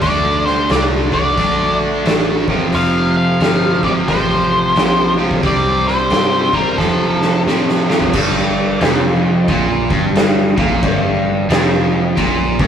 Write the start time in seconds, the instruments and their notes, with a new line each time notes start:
0.00 picked electric bass D2, overdriven electric guitar D3 A3 D4, tonewheel organ A3 F#4 D5, lead electric guitar D5, kick, open hi-hat
0.46 lead electric guitar C5, snare
0.69 picked electric bass C2, overdriven electric guitar D3 A3 D4, lead electric guitar D5, snare, open hi-hat
1.12 overdriven electric guitar D3 A3 D4, lead electric guitar D5, kick
1.38 picked electric bass A#1, overdriven electric guitar D3 A3 D4, kick, open hi-hat
2.05 picked electric bass A1, overdriven electric guitar D3 A3 D4, snare, open hi-hat
2.46 overdriven electric guitar F2 C3 F3, tonewheel organ A#3 F#4 C#5, kick
2.64 tonewheel organ A3 F4 C5
2.72 picked electric bass F1, overdriven electric guitar F2 C3 F3, lead electric guitar F5, open hi-hat
3.17 lead electric guitar F5
3.40 picked electric bass G1, overdriven electric guitar F2 C3 F3, snare, open hi-hat
3.83 overdriven electric guitar F2 C3 F3, lead electric guitar D5, kick
4.08 picked electric bass A1, overdriven electric guitar F2 C3 F3, lead electric guitar C5, kick, open hi-hat
4.76 picked electric bass A#1, overdriven electric guitar F2 C3 F3, snare, open hi-hat
5.18 overdriven electric guitar F2 C3 F3
5.31 kick
5.43 picked electric bass C2, overdriven electric guitar C3 G3 C4, tonewheel organ G3 E4 C5, lead electric guitar D5, kick, open hi-hat
5.88 lead electric guitar C5, snare
6.10 picked electric bass G2, overdriven electric guitar C3 G3 C4, snare, open hi-hat
6.53 overdriven electric guitar C3 G3 C4, lead electric guitar A#4, kick
6.78 picked electric bass F2, overdriven electric guitar F2 C3 F3, tonewheel organ A3 F4 C5, lead electric guitar A4, kick, snare
7.22 snare
7.46 overdriven electric guitar F2 C3 F3, picked electric bass A2, snare
7.69 snare
7.88 overdriven electric guitar F2 C3 F3, snare
8.01 floor tom
8.13 picked electric bass G1, overdriven electric guitar G2, kick, crash
8.37 snare
8.81 picked electric bass F1, overdriven electric guitar F2, snare, crash
9.48 picked electric bass A#1, overdriven electric guitar A#2, kick, crash
9.90 picked electric bass G1, overdriven electric guitar G2, kick
10.15 snare, crash
10.57 picked electric bass A#1, overdriven electric guitar A#2, kick
10.82 picked electric bass G1, overdriven electric guitar G2, kick, crash
11.49 picked electric bass F1, overdriven electric guitar F2, snare, crash
12.17 picked electric bass A#1, overdriven electric guitar A#2, kick, crash
12.59 picked electric bass G1, overdriven electric guitar G2, kick